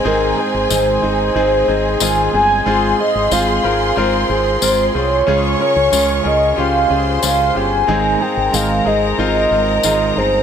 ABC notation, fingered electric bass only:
X:1
M:4/4
L:1/16
Q:1/4=92
K:Ab
V:1 name="Fingered electric bass" clef=bass
A,,,2 z A,,, A,,,2 A,,,2 A,,,2 A,,,2 A,,,2 G,,,2 | A,,,2 z A,,, A,,,2 A,,,2 A,,,2 A,,,2 A,,,2 C,,2 | D,,2 z D,, D,,2 D,,2 D,,2 D,,2 D,,2 G,,,2 | A,,,2 z A,,, A,,,2 A,,,2 A,,,2 A,,,2 A,,,2 G,,,2 |]